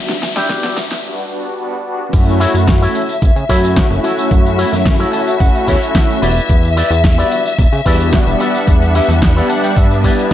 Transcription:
Already playing: analog synth pad G3 B3 D4 F#4, string section E5, riser
0.09 muted clean electric guitar stroke, snare, shaker
0.22 muted clean electric guitar stroke, snare, open hi-hat, tambourine, shaker
0.36 clean electric guitar D4 E4 G4, snare, closed hi-hat, tambourine, shaker
0.49 analog synth pad G3 B3 D4 F#4, kick, snare, closed hi-hat, tambourine, shaker
0.63 snare, closed hi-hat, shaker
0.77 snare, open hi-hat, tambourine, shaker
0.90 snare, closed hi-hat, tambourine, shaker
1.03 analog synth pad G3 B3 D4 F#4
1.31 analog synth pad G3 B3 D4 F#4
1.58 analog synth pad G3 B3 D4 F#4
1.85 analog synth pad G3 B3 D4 F#4
2.12 analog synth bass F#2, analog synth pad A3 C#4 E4 F#4, string section E5, kick, closed hi-hat, crash, tambourine
2.28 tambourine
2.40 clean electric guitar E4 F#4 A4 C#5, open hi-hat
2.54 analog synth bass F#2, closed hi-hat, tambourine
2.67 muted clean electric guitar stroke, kick, snare, closed hi-hat, tambourine
2.81 analog synth pad A3 C#4 E4 F#4, clean electric guitar E4 F#4 A4 C#5, tambourine
2.95 open hi-hat
3.09 closed hi-hat, tambourine
3.22 analog synth bass F#1, kick, closed hi-hat, tambourine
3.36 analog synth bass C#3, closed hi-hat, tambourine
3.49 analog synth bass F#2, analog synth pad A3 C#4 E4 F#4, clean electric guitar E4 F#4 A4 C#5, kick, open hi-hat
3.63 analog synth pad A3 C#4 E4 F#4, closed hi-hat, tambourine
3.77 kick, snare, closed hi-hat, tambourine
3.90 analog synth bass F#1, analog synth pad A3 C#4 E4 F#4, tambourine
4.04 clean electric guitar E4 F#4 A4 C#5, open hi-hat
4.18 closed hi-hat, tambourine
4.31 analog synth bass F#2, kick, closed hi-hat, tambourine
4.46 tambourine
4.58 clean electric guitar E4 F#4 A4 C#5, open hi-hat
4.72 analog synth bass F#2, snare, closed hi-hat, tambourine
4.85 muted clean electric guitar stroke, kick, snare, closed hi-hat, tambourine
4.99 analog synth pad A3 C#4 E4 F#4, clean electric guitar E4 F#4 A4 C#5, closed hi-hat, tambourine
5.13 clean electric guitar A5, open hi-hat
5.27 closed hi-hat, tambourine
5.39 analog synth bass F#1, analog synth pad A3 C#4 E4 F#4, clean electric guitar F#5, kick, closed hi-hat, tambourine
5.55 closed hi-hat, tambourine
5.67 analog synth bass E2, clean electric guitar E4 F#4 A4 C#5 E5, kick, open hi-hat
5.81 analog synth pad A3 C#4 E4 F#4, closed hi-hat, tambourine
5.95 clean electric guitar E5, kick, snare, closed hi-hat, tambourine
6.10 closed hi-hat, tambourine
6.22 analog synth bass E1, clean electric guitar E4 G4 B4 D5, open hi-hat
6.37 closed hi-hat, tambourine
6.49 analog synth bass E2, kick, closed hi-hat, tambourine
6.65 tambourine
6.77 clean electric guitar E4 G4 B4 D5, open hi-hat
6.90 analog synth bass E2, closed hi-hat, tambourine
7.04 muted clean electric guitar stroke, kick, snare, closed hi-hat, tambourine
7.17 analog synth pad G3 B3 D4 F#4, clean electric guitar E4 G4 B4 D5, tambourine
7.32 open hi-hat
7.45 closed hi-hat, tambourine
7.59 analog synth bass E1, kick, closed hi-hat, tambourine
7.72 analog synth bass C#3, closed hi-hat, tambourine
7.85 analog synth bass E2, analog synth pad G3 B3 D4 F#4, clean electric guitar E4 G4 B4 D5, kick, open hi-hat
8.00 analog synth pad G3 B3 D4 F#4, closed hi-hat, tambourine
8.13 kick, snare, closed hi-hat, tambourine
8.26 analog synth bass E1, analog synth pad G3 B3 D4 F#5, tambourine
8.40 clean electric guitar E4 G4 B4 D5, open hi-hat
8.54 closed hi-hat, tambourine
8.67 analog synth bass E2, kick, closed hi-hat, tambourine
8.82 tambourine
8.95 clean electric guitar E4 G4 B4 E5, open hi-hat
9.09 analog synth bass E2, snare, closed hi-hat, tambourine
9.22 muted clean electric guitar stroke, kick, snare, closed hi-hat, tambourine
9.35 analog synth pad G3 B3 D4 F#5, clean electric guitar E4 G4 B4 D5, closed hi-hat, tambourine
9.50 clean electric guitar A5, open hi-hat
9.64 clean electric guitar G5, closed hi-hat, tambourine
9.76 analog synth bass G2, analog synth pad G3 B3 D4, clean electric guitar E5, kick, closed hi-hat, tambourine
9.91 closed hi-hat, tambourine
10.04 clean electric guitar E4 G4 B4 D5, kick, open hi-hat
10.17 analog synth pad G3 B3 D4, closed hi-hat, tambourine

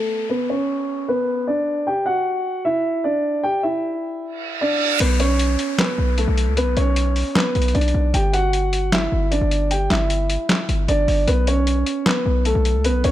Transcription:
Already playing: grand piano A3 A4, downlifter
0.29 grand piano B3 B4
0.50 grand piano C#4 C#5
1.08 grand piano B3 B4
1.47 grand piano D4 D5
1.87 grand piano G4 G5
2.06 grand piano F#4 F#5
2.65 grand piano E4 E5
3.04 grand piano D4 D5
3.43 grand piano G4 G5
3.63 grand piano E4 E5
4.22 reverse cymbal
4.61 grand piano D4 D5
5.00 808-style bass B1, grand piano B3 B4, closed hi-hat, crash, downlifter
5.20 grand piano C#4 C#5, closed hi-hat
5.39 closed hi-hat
5.59 closed hi-hat
5.78 grand piano B3 B4, snare, clap, closed hi-hat
5.98 808-style bass B1
6.18 grand piano A3 A4, closed hi-hat
6.28 808-style bass B1
6.38 closed hi-hat
6.47 808-style bass C#2
6.57 grand piano B3 B4, closed hi-hat
6.62 808-style bass B1
6.77 808-style bass B1, grand piano C#4 C#5, closed hi-hat
6.96 closed hi-hat
7.16 open hi-hat
7.35 grand piano B3 B4, snare, clap, closed hi-hat
7.55 808-style bass B1, closed hi-hat
7.62 closed hi-hat
7.68 closed hi-hat
7.75 808-style bass B1, grand piano D4 D5, closed hi-hat
7.81 closed hi-hat
7.88 closed hi-hat
7.94 808-style bass B1
8.14 808-style bass G1, grand piano G4 G5, closed hi-hat
8.33 grand piano F#4 F#5, closed hi-hat
8.53 closed hi-hat
8.73 closed hi-hat
8.92 grand piano E4 E5, snare, clap, closed hi-hat
9.12 808-style bass G1
9.31 grand piano D4 D5, closed hi-hat
9.41 808-style bass G1
9.51 closed hi-hat
9.71 grand piano G4 G5, closed hi-hat
9.90 808-style bass G1, grand piano E4 E5, snare, clap, closed hi-hat
10.10 closed hi-hat
10.30 closed hi-hat
10.49 snare, clap, closed hi-hat
10.69 808-style bass G1, closed hi-hat
10.88 808-style bass G1, grand piano D4 D5, closed hi-hat
11.08 808-style bass G1, open hi-hat
11.28 808-style bass B1, grand piano B3 B4, closed hi-hat
11.47 grand piano C#4 C#5, closed hi-hat
11.67 closed hi-hat
11.86 closed hi-hat
12.06 grand piano B3 B4, snare, clap, closed hi-hat
12.26 808-style bass B1
12.45 grand piano A3 A4, closed hi-hat
12.55 808-style bass B1
12.65 closed hi-hat
12.75 808-style bass C#2
12.84 grand piano B3 B4, closed hi-hat
12.89 808-style bass B1
13.04 808-style bass B1, grand piano C#4 C#5, closed hi-hat

